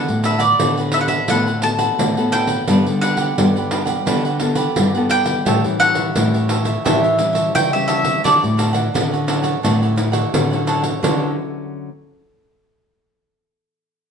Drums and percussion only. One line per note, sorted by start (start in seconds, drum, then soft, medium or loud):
0.08 pandeiro soft
0.24 pandeiro medium
0.39 pandeiro medium
0.59 pandeiro medium
0.77 pandeiro soft
0.92 pandeiro medium
1.08 pandeiro medium
1.28 pandeiro medium
1.48 pandeiro soft
1.62 pandeiro medium
1.79 pandeiro medium
1.99 pandeiro medium
2.17 pandeiro soft
2.32 pandeiro medium
2.47 pandeiro medium
2.68 pandeiro medium
2.87 pandeiro soft
3.02 pandeiro medium
3.17 pandeiro medium
3.38 pandeiro medium
3.57 pandeiro soft
3.71 pandeiro medium
3.87 pandeiro medium
4.07 pandeiro medium
4.25 pandeiro soft
4.40 pandeiro medium
4.55 pandeiro medium
4.76 pandeiro medium
4.95 pandeiro soft
5.10 pandeiro medium
5.26 pandeiro medium
5.46 pandeiro medium
5.64 pandeiro soft
5.80 pandeiro medium
5.95 pandeiro medium
6.16 pandeiro medium
6.34 pandeiro soft
6.49 pandeiro medium
6.65 pandeiro medium
6.86 pandeiro medium
7.04 pandeiro soft
7.19 pandeiro medium
7.35 pandeiro medium
7.55 pandeiro medium
7.74 pandeiro soft
7.89 pandeiro medium
8.05 pandeiro medium
8.25 pandeiro medium
8.44 pandeiro soft
8.59 pandeiro medium
8.74 pandeiro medium
8.95 pandeiro medium
9.14 pandeiro soft
9.28 pandeiro medium
9.44 pandeiro soft
9.65 pandeiro medium
9.83 pandeiro soft
9.97 pandeiro medium
10.13 pandeiro medium
10.34 pandeiro medium
10.53 pandeiro soft
10.67 pandeiro medium
10.84 pandeiro medium
11.04 pandeiro medium